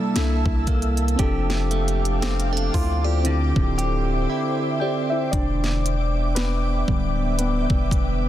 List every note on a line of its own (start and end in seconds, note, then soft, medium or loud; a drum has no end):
0.00 1.19 C3 medium
0.00 0.17 G3 loud
0.00 0.10 A#3 medium
0.00 0.66 A#3 medium
0.00 1.15 A#3 medium
0.00 0.11 D4 medium
0.00 0.12 E4 medium
0.00 0.15 E4 medium
0.00 0.13 A4 medium
0.00 1.19 A4 medium
0.00 1.15 E5 medium
0.00 1.15 A5 medium
0.00 1.17 E6 medium
0.14 0.44 C2 loud
0.14 1.18 A#3 medium
0.14 1.17 D4 medium
0.14 1.31 E4 medium
0.14 1.19 E4 medium
0.14 1.20 A4 medium
0.14 snare loud
0.14 closed hi-hat medium
0.46 1.16 C2 loud
0.46 kick loud
0.67 1.31 A#3 medium
0.67 kick loud
0.67 closed hi-hat medium
0.67 open hi-hat medium
0.82 closed hi-hat soft
0.97 closed hi-hat soft
1.08 closed hi-hat soft
1.16 2.70 F1 loud
1.16 3.38 F3 medium
1.16 2.19 C4 medium
1.16 2.20 D4 medium
1.16 2.74 G4 medium
1.16 3.24 A4 medium
1.16 3.24 F5 medium
1.16 5.29 G5 medium
1.16 5.29 D6 medium
1.16 kick loud
1.16 closed hi-hat medium
1.20 2.21 G4 medium
1.20 2.22 A4 medium
1.50 snare medium
1.71 3.38 A3 medium
1.71 closed hi-hat soft
1.88 closed hi-hat soft
2.05 closed hi-hat medium
2.22 2.51 B3 medium
2.22 2.53 C4 medium
2.22 2.51 G4 medium
2.22 snare loud
2.22 closed hi-hat medium
2.40 closed hi-hat medium
2.53 2.74 C4 medium
2.53 3.38 D4 medium
2.53 2.73 A4 medium
2.57 closed hi-hat medium
2.74 3.53 D2 loud
2.74 3.03 E4 medium
2.74 3.04 F4 medium
2.74 3.03 C5 medium
2.74 kick medium
2.74 open hi-hat medium
3.04 3.54 F4 medium
3.04 3.38 G4 medium
3.04 3.53 D5 medium
3.23 5.95 D3 medium
3.23 5.27 C4 medium
3.23 4.27 E4 medium
3.23 5.31 C5 medium
3.23 5.31 E5 medium
3.23 closed hi-hat medium
3.27 4.28 G4 medium
3.27 4.29 A4 medium
3.56 4.27 D1 loud
3.56 kick loud
3.78 5.95 G4 medium
3.78 closed hi-hat medium
4.30 5.95 E4 medium
4.59 4.80 G4 medium
4.59 4.80 E5 medium
4.80 5.45 C4 medium
4.80 5.09 G4 medium
4.80 5.10 D5 medium
4.80 5.11 G5 loud
5.10 5.32 E4 medium
5.10 5.60 C5 medium
5.10 5.33 E5 loud
5.31 6.84 E1 loud
5.31 8.29 B3 medium
5.31 6.33 D4 medium
5.31 6.39 D5 loud
5.31 8.29 E5 medium
5.31 8.29 G5 medium
5.31 8.29 D6 medium
5.31 kick loud
5.31 closed hi-hat medium
5.64 snare medium
5.86 closed hi-hat medium
6.35 6.87 B3 medium
6.35 7.35 B4 loud
6.35 snare loud
6.35 closed hi-hat medium
6.87 7.67 D1 loud
6.87 8.29 D3 medium
6.87 8.29 G3 medium
6.87 7.39 B3 medium
6.87 kick medium
7.38 8.29 B3 medium
7.38 8.29 B4 medium
7.38 closed hi-hat medium
7.70 7.91 E1 loud
7.70 kick medium
7.91 8.29 E1 loud
7.91 kick loud
7.91 closed hi-hat medium